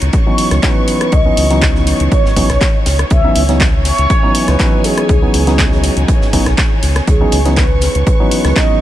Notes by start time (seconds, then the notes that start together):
Already playing: C#5 C#6
0.02 C#2, closed hi-hat
0.13 C#5, kick, closed hi-hat
0.26 E3 F#3 B3 C#4 D#4
0.38 closed hi-hat, open hi-hat
0.51 C#2, cross-stick, snare, closed hi-hat
0.63 E3 F#3 B3 C#4 D#4 B4, kick, snare, clap, closed hi-hat
0.88 closed hi-hat, open hi-hat
1.01 cross-stick, closed hi-hat
1.12 C#2 D#5, kick, closed hi-hat
1.25 E3 F#3 B3 C#4 D#4
1.37 C#2, closed hi-hat, open hi-hat
1.50 E3 F#3 B3 C#4 D#4, snare, closed hi-hat
1.61 kick, snare, clap, closed hi-hat
1.75 snare
1.87 closed hi-hat, open hi-hat
2.00 C#2, closed hi-hat
2.12 C#5, kick, closed hi-hat
2.25 G#1, snare
2.36 E3 F#3 B3 C#4 D#4 C#5, kick, closed hi-hat, open hi-hat
2.50 B1, cross-stick, snare, closed hi-hat
2.61 kick, snare, clap, closed hi-hat
2.86 C#2, snare, closed hi-hat, open hi-hat
2.99 cross-stick, closed hi-hat
3.10 C#2 E5 G#5, kick, closed hi-hat
3.24 E3 F#3 B3 C#4 D#4
3.35 C#2, closed hi-hat, open hi-hat
3.49 E3 F#3 B3 C#4 D#4, snare, closed hi-hat
3.60 kick, snare, clap, closed hi-hat
3.85 C#5, snare, closed hi-hat, open hi-hat
3.98 C#2, closed hi-hat
4.10 kick, closed hi-hat
4.23 E3 F#3 B3 C#4 D#4
4.35 closed hi-hat, open hi-hat
4.48 C#2 B4, cross-stick, snare, closed hi-hat
4.59 E3 F#3 B3 C#4 D#4, kick, snare, clap, closed hi-hat
4.84 G#4, closed hi-hat, open hi-hat
4.98 cross-stick, closed hi-hat
5.09 C#2, kick, closed hi-hat
5.22 E3 F#3 B3 C#4 D#4
5.34 C#2, closed hi-hat, open hi-hat
5.47 E3 F#3 B3 C#4 D#4, snare, closed hi-hat
5.58 kick, snare, clap, closed hi-hat
5.72 snare
5.84 closed hi-hat, open hi-hat
5.97 C#2, closed hi-hat
6.08 kick, closed hi-hat
6.22 G#1, snare
6.33 E3 F#3 B3 C#4 D#4, kick, closed hi-hat, open hi-hat
6.46 B1, cross-stick, snare, closed hi-hat
6.57 kick, snare, clap, closed hi-hat
6.83 C#2, snare, closed hi-hat, open hi-hat
6.96 cross-stick, snare, closed hi-hat
7.07 C#2 G#4 C#6, kick, closed hi-hat
7.21 E3 F#3 B3 C#4 D#4
7.32 C#2, closed hi-hat, open hi-hat
7.45 E3 F#3 B3 C#4 D#4, snare, closed hi-hat
7.56 B4, kick, snare, clap, closed hi-hat
7.81 snare, closed hi-hat, open hi-hat
7.95 C#2, closed hi-hat
8.07 B4, kick, closed hi-hat
8.20 E3 F#3 B3 C#4 D#4
8.31 closed hi-hat, open hi-hat
8.45 C#2, cross-stick, snare, closed hi-hat
8.56 E3 F#3 B3 C#4 D#4 D#5, kick, snare, clap, closed hi-hat